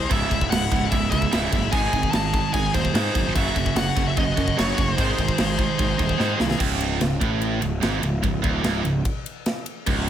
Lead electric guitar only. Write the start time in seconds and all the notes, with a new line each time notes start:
Already playing: C5
0.12 E5
0.50 F#5
0.91 E5
1.11 E5
1.72 G#5
2.11 A5
2.54 G#5
2.74 C5
3.36 E5
3.76 F#5
4.08 E5
4.18 D#5
4.58 C#5
4.81 C5